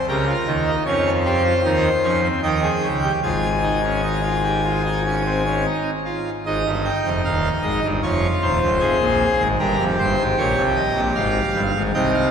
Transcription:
0.09 0.33 C#2 medium
0.09 0.33 C#3 medium
0.09 0.25 G4 medium
0.09 0.75 A#4 medium
0.28 0.52 F4 medium
0.47 0.71 D#2 medium
0.47 0.71 D#3 medium
0.67 0.83 D#4 medium
0.86 1.53 F2 medium
0.86 1.53 F3 medium
0.86 1.10 C#4 medium
0.86 1.10 C#5 medium
1.25 1.42 G4 medium
1.25 2.27 C5 medium
1.44 1.61 F4 medium
1.64 1.89 D#2 medium
1.64 1.89 D#3 medium
1.64 1.89 D#4 medium
2.03 2.28 F2 medium
2.03 2.28 F3 medium
2.03 2.21 C#4 medium
2.23 2.40 C4 medium
2.43 2.68 D#2 medium
2.43 2.68 D#3 medium
2.43 2.60 D#4 medium
2.43 3.12 G5 medium
2.62 2.87 G#4 medium
2.83 3.08 C#2 medium
2.83 3.08 C#3 medium
3.03 3.20 G4 medium
3.23 5.66 G#1 medium
3.23 5.66 G#2 medium
3.23 3.48 F4 medium
3.23 5.66 G#5 medium
3.63 3.81 D#4 medium
3.84 4.01 C#4 medium
4.03 4.21 D#4 medium
4.24 4.41 F4 medium
4.44 4.61 G4 medium
4.65 4.82 F4 medium
4.85 5.02 D#4 medium
5.05 5.22 C#4 medium
5.25 5.42 C4 medium
5.46 5.63 C#4 soft
5.66 5.90 D#4 medium
6.05 6.30 F4 medium
6.46 6.63 G#1 medium
6.46 6.62 G#2 medium
6.46 7.81 D#4 medium
6.46 6.70 D#5 medium
6.65 6.89 G1 medium
6.65 6.89 G2 medium
6.85 7.09 G5 medium
7.05 7.21 F1 medium
7.05 7.22 F2 medium
7.25 7.49 D#1 medium
7.25 7.49 D#2 medium
7.25 7.49 F5 medium
7.63 7.80 G#1 medium
7.63 7.80 G#2 medium
7.63 7.87 D#5 medium
7.83 8.00 G1 medium
7.83 8.00 G2 medium
8.03 8.27 F1 medium
8.03 8.27 F2 medium
8.03 8.70 F4 medium
8.03 8.27 C#5 medium
8.42 8.59 D#1 medium
8.42 8.58 D#2 medium
8.42 9.43 C5 medium
8.62 8.78 C#1 medium
8.62 8.78 C#2 medium
8.80 8.97 F1 medium
8.80 8.97 F2 medium
8.80 9.48 G#4 medium
9.00 9.24 A#1 medium
9.00 9.25 A#2 medium
9.40 9.56 G#1 medium
9.40 9.56 G#2 medium
9.59 9.76 G1 medium
9.59 9.76 G2 medium
9.59 11.61 G4 medium
9.59 9.84 A#4 medium
9.79 9.95 F1 medium
9.79 9.95 F2 medium
9.99 10.15 G1 medium
9.99 10.16 G2 medium
9.99 10.23 C5 medium
10.18 10.35 G#1 medium
10.18 10.35 G#2 medium
10.38 10.54 A#1 medium
10.38 10.54 A#2 medium
10.38 10.62 C#5 medium
10.57 10.81 C2 medium
10.57 10.81 C3 medium
10.76 11.00 D#5 medium
10.95 11.13 A#1 medium
10.95 11.12 A#2 medium
11.15 11.40 G#1 medium
11.15 11.39 G#2 medium
11.15 11.82 F5 medium
11.55 11.71 G1 medium
11.55 11.71 G2 medium
11.75 11.91 G#1 medium
11.75 11.91 G#2 medium
11.94 12.31 C2 medium
11.94 12.31 C3 medium
11.94 12.31 D#4 medium
11.94 12.11 G5 medium
12.14 12.30 F5 medium

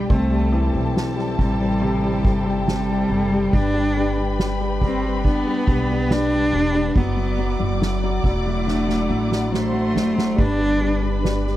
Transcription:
0.00 0.12 G3 medium
0.00 0.12 D4 medium
0.10 0.70 C2 loud
0.10 0.92 A3 medium
0.10 3.49 C4 medium
0.10 3.50 E4 medium
0.10 3.50 A4 medium
0.10 3.49 C5 medium
0.10 6.92 G5 medium
0.10 3.50 A5 medium
0.10 kick loud
0.10 ride medium
0.30 0.72 G3 medium
0.52 2.20 E3 medium
0.73 1.35 B1 loud
0.73 1.14 G3 medium
0.96 snare loud
0.96 ride medium
1.16 1.58 G3 medium
1.16 snare soft
1.38 2.21 A1 loud
1.38 1.80 C3 medium
1.38 2.64 G3 medium
1.38 kick medium
1.38 ride medium
1.59 2.01 G3 medium
1.81 2.22 C3 medium
1.81 ride medium
2.02 2.44 G3 medium
2.23 3.06 G1 medium
2.23 2.65 C3 medium
2.23 kick medium
2.23 ride medium
2.46 2.87 G3 medium
2.67 3.08 C3 medium
2.67 3.55 G3 loud
2.67 snare loud
2.67 ride medium
2.89 3.30 G3 medium
3.10 3.50 F#1 medium
3.10 3.51 C3 medium
3.10 ride medium
3.32 3.51 G3 medium
3.52 5.42 G1 loud
3.52 3.72 G3 medium
3.52 6.92 D4 medium
3.52 4.39 D4 loud
3.52 6.92 B4 medium
3.52 6.93 B4 medium
3.52 6.92 B5 loud
3.52 kick loud
3.52 ride medium
3.74 3.95 G3 medium
3.97 4.16 G3 medium
4.17 4.39 G3 medium
4.39 4.59 G3 medium
4.39 snare loud
4.39 ride medium
4.60 4.81 G3 medium
4.82 5.03 G3 medium
4.82 5.22 C4 medium
4.82 kick medium
4.82 ride medium
5.04 5.45 G3 medium
5.25 6.13 B3 loud
5.25 6.92 D4 medium
5.25 kick medium
5.25 ride medium
5.47 5.67 G3 medium
5.67 6.49 B1 loud
5.67 5.89 G3 medium
5.67 kick medium
5.67 ride medium
5.90 6.10 G3 medium
6.11 6.30 G3 medium
6.11 6.98 D4 loud
6.11 snare loud
6.11 ride medium
6.32 6.53 G3 medium
6.53 6.93 E1 medium
6.53 6.73 G3 medium
6.74 6.95 G3 medium
6.96 7.56 F#1 loud
6.96 7.15 F#3 medium
6.96 7.82 B3 medium
6.96 10.35 E4 medium
6.96 9.49 D5 medium
6.96 10.36 D5 medium
6.96 10.35 F#5 medium
6.96 9.49 D6 medium
6.96 kick loud
6.96 ride medium
7.17 7.37 F#3 medium
7.38 7.58 F#3 medium
7.38 ride medium
7.60 8.20 F#1 loud
7.60 7.79 F#3 medium
7.81 8.02 F#3 medium
7.81 snare loud
7.81 ride medium
8.03 8.23 F#3 medium
8.03 ride soft
8.24 9.06 E1 medium
8.24 8.45 F#3 medium
8.24 9.50 A3 medium
8.24 kick medium
8.24 ride medium
8.46 8.86 F#3 medium
8.66 10.34 D4 medium
8.66 snare medium
8.87 9.07 F#3 medium
8.87 snare medium
9.08 9.92 A1 medium
9.08 9.29 F#3 medium
9.30 9.50 F#3 medium
9.30 snare medium
9.52 9.71 F#3 soft
9.52 10.42 A3 loud
9.52 10.37 C5 medium
9.52 10.37 C6 medium
9.52 snare medium
9.73 9.92 F#3 medium
9.94 10.35 F#1 medium
9.94 10.14 F#3 medium
9.94 snare loud
10.16 10.37 F#3 medium
10.16 snare loud
10.36 11.57 G1 loud
10.36 10.57 G3 medium
10.36 11.57 D4 medium
10.36 11.57 B4 medium
10.36 11.57 B5 medium
10.36 kick loud
10.40 11.25 D4 loud
10.40 11.57 D5 medium
10.59 10.79 G3 soft
10.81 11.01 G3 medium
10.81 ride medium
11.02 11.22 G3 soft
11.24 11.44 G3 medium
11.24 snare loud
11.24 ride medium
11.46 11.57 G3 medium
11.46 snare soft
11.46 ride soft

